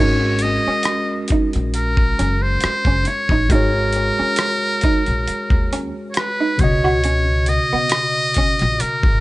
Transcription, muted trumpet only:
0, 0, Header, 1, 2, 480
1, 0, Start_track
1, 0, Key_signature, 5, "minor"
1, 0, Tempo, 882353
1, 1905, Time_signature, 4, 2, 24, 8
1, 5006, End_track
2, 0, Start_track
2, 0, Title_t, "Muted trumpet"
2, 0, Program_c, 0, 59
2, 0, Note_on_c, 0, 73, 88
2, 229, Note_on_c, 0, 75, 95
2, 237, Note_off_c, 0, 73, 0
2, 707, Note_off_c, 0, 75, 0
2, 955, Note_on_c, 0, 70, 75
2, 1319, Note_on_c, 0, 72, 83
2, 1327, Note_off_c, 0, 70, 0
2, 1673, Note_on_c, 0, 73, 86
2, 1681, Note_off_c, 0, 72, 0
2, 1912, Note_on_c, 0, 70, 91
2, 1920, Note_off_c, 0, 73, 0
2, 3209, Note_off_c, 0, 70, 0
2, 3321, Note_on_c, 0, 73, 67
2, 3360, Note_on_c, 0, 71, 88
2, 3368, Note_off_c, 0, 73, 0
2, 3594, Note_on_c, 0, 73, 91
2, 3602, Note_off_c, 0, 71, 0
2, 4074, Note_on_c, 0, 75, 99
2, 4083, Note_off_c, 0, 73, 0
2, 4794, Note_on_c, 0, 70, 91
2, 4802, Note_off_c, 0, 75, 0
2, 5006, Note_off_c, 0, 70, 0
2, 5006, End_track
0, 0, End_of_file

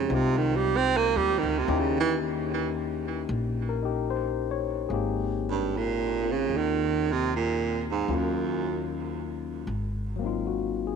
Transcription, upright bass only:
0, 0, Header, 1, 2, 480
1, 0, Start_track
1, 0, Key_signature, -4, "major"
1, 0, Tempo, 797872
1, 1020, Time_signature, 4, 2, 24, 8
1, 6592, End_track
2, 0, Start_track
2, 0, Title_t, "Upright bass"
2, 0, Program_c, 0, 32
2, 59, Note_on_c, 0, 36, 85
2, 675, Note_off_c, 0, 36, 0
2, 696, Note_on_c, 0, 39, 66
2, 847, Note_off_c, 0, 39, 0
2, 861, Note_on_c, 0, 38, 76
2, 1006, Note_off_c, 0, 38, 0
2, 1010, Note_on_c, 0, 39, 85
2, 1951, Note_off_c, 0, 39, 0
2, 1979, Note_on_c, 0, 34, 91
2, 2918, Note_off_c, 0, 34, 0
2, 2947, Note_on_c, 0, 32, 71
2, 3882, Note_off_c, 0, 32, 0
2, 3908, Note_on_c, 0, 39, 70
2, 4841, Note_off_c, 0, 39, 0
2, 4863, Note_on_c, 0, 39, 70
2, 5798, Note_off_c, 0, 39, 0
2, 5818, Note_on_c, 0, 32, 76
2, 6592, Note_off_c, 0, 32, 0
2, 6592, End_track
0, 0, End_of_file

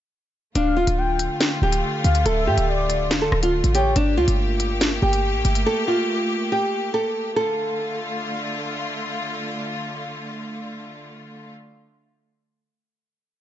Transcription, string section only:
0, 0, Header, 1, 2, 480
1, 0, Start_track
1, 0, Key_signature, -1, "minor"
1, 0, Tempo, 425532
1, 626, Time_signature, 4, 2, 24, 8
1, 15116, End_track
2, 0, Start_track
2, 0, Title_t, "String section"
2, 0, Program_c, 0, 48
2, 627, Note_on_c, 0, 50, 85
2, 627, Note_on_c, 0, 57, 76
2, 627, Note_on_c, 0, 65, 92
2, 4428, Note_off_c, 0, 50, 0
2, 4428, Note_off_c, 0, 57, 0
2, 4428, Note_off_c, 0, 65, 0
2, 4466, Note_on_c, 0, 57, 84
2, 4466, Note_on_c, 0, 58, 79
2, 4466, Note_on_c, 0, 67, 92
2, 8268, Note_off_c, 0, 57, 0
2, 8268, Note_off_c, 0, 58, 0
2, 8268, Note_off_c, 0, 67, 0
2, 8306, Note_on_c, 0, 57, 74
2, 8306, Note_on_c, 0, 65, 91
2, 8307, Note_on_c, 0, 50, 83
2, 13003, Note_off_c, 0, 65, 0
2, 13004, Note_off_c, 0, 50, 0
2, 13004, Note_off_c, 0, 57, 0
2, 15116, End_track
0, 0, End_of_file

